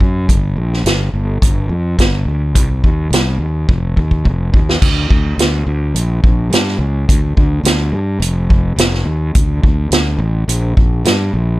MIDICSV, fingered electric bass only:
0, 0, Header, 1, 2, 480
1, 0, Start_track
1, 0, Key_signature, -2, "minor"
1, 0, Tempo, 566572
1, 240, Time_signature, 4, 2, 24, 8
1, 9827, End_track
2, 0, Start_track
2, 0, Title_t, "Fingered electric bass"
2, 0, Program_c, 0, 33
2, 0, Note_on_c, 0, 42, 74
2, 242, Note_on_c, 0, 31, 82
2, 255, Note_off_c, 0, 42, 0
2, 454, Note_off_c, 0, 31, 0
2, 478, Note_on_c, 0, 34, 80
2, 692, Note_off_c, 0, 34, 0
2, 715, Note_on_c, 0, 31, 77
2, 931, Note_off_c, 0, 31, 0
2, 961, Note_on_c, 0, 31, 83
2, 1174, Note_off_c, 0, 31, 0
2, 1200, Note_on_c, 0, 31, 78
2, 1414, Note_off_c, 0, 31, 0
2, 1434, Note_on_c, 0, 41, 82
2, 1651, Note_off_c, 0, 41, 0
2, 1684, Note_on_c, 0, 31, 80
2, 1896, Note_off_c, 0, 31, 0
2, 1911, Note_on_c, 0, 38, 77
2, 2160, Note_off_c, 0, 38, 0
2, 2160, Note_on_c, 0, 36, 93
2, 2374, Note_off_c, 0, 36, 0
2, 2402, Note_on_c, 0, 39, 74
2, 2615, Note_off_c, 0, 39, 0
2, 2630, Note_on_c, 0, 36, 83
2, 2849, Note_off_c, 0, 36, 0
2, 2867, Note_on_c, 0, 39, 79
2, 3087, Note_off_c, 0, 39, 0
2, 3125, Note_on_c, 0, 29, 77
2, 3337, Note_off_c, 0, 29, 0
2, 3362, Note_on_c, 0, 39, 85
2, 3575, Note_off_c, 0, 39, 0
2, 3598, Note_on_c, 0, 29, 79
2, 3813, Note_off_c, 0, 29, 0
2, 3839, Note_on_c, 0, 39, 66
2, 4054, Note_off_c, 0, 39, 0
2, 4081, Note_on_c, 0, 38, 87
2, 4298, Note_off_c, 0, 38, 0
2, 4322, Note_on_c, 0, 38, 82
2, 4538, Note_off_c, 0, 38, 0
2, 4556, Note_on_c, 0, 38, 75
2, 4774, Note_off_c, 0, 38, 0
2, 4800, Note_on_c, 0, 38, 88
2, 5017, Note_off_c, 0, 38, 0
2, 5037, Note_on_c, 0, 34, 79
2, 5255, Note_off_c, 0, 34, 0
2, 5282, Note_on_c, 0, 34, 86
2, 5498, Note_off_c, 0, 34, 0
2, 5510, Note_on_c, 0, 43, 78
2, 5731, Note_off_c, 0, 43, 0
2, 5750, Note_on_c, 0, 37, 80
2, 5971, Note_off_c, 0, 37, 0
2, 6004, Note_on_c, 0, 38, 90
2, 6219, Note_off_c, 0, 38, 0
2, 6242, Note_on_c, 0, 38, 83
2, 6458, Note_off_c, 0, 38, 0
2, 6468, Note_on_c, 0, 38, 88
2, 6690, Note_off_c, 0, 38, 0
2, 6710, Note_on_c, 0, 43, 88
2, 6931, Note_off_c, 0, 43, 0
2, 6946, Note_on_c, 0, 29, 89
2, 7384, Note_off_c, 0, 29, 0
2, 7423, Note_on_c, 0, 29, 85
2, 7647, Note_off_c, 0, 29, 0
2, 7672, Note_on_c, 0, 39, 81
2, 7892, Note_off_c, 0, 39, 0
2, 7922, Note_on_c, 0, 38, 89
2, 8137, Note_off_c, 0, 38, 0
2, 8161, Note_on_c, 0, 38, 85
2, 8377, Note_off_c, 0, 38, 0
2, 8393, Note_on_c, 0, 38, 75
2, 8612, Note_off_c, 0, 38, 0
2, 8629, Note_on_c, 0, 33, 93
2, 8849, Note_off_c, 0, 33, 0
2, 8877, Note_on_c, 0, 34, 96
2, 9094, Note_off_c, 0, 34, 0
2, 9126, Note_on_c, 0, 34, 81
2, 9339, Note_off_c, 0, 34, 0
2, 9357, Note_on_c, 0, 43, 91
2, 9574, Note_off_c, 0, 43, 0
2, 9603, Note_on_c, 0, 34, 75
2, 9817, Note_off_c, 0, 34, 0
2, 9827, End_track
0, 0, End_of_file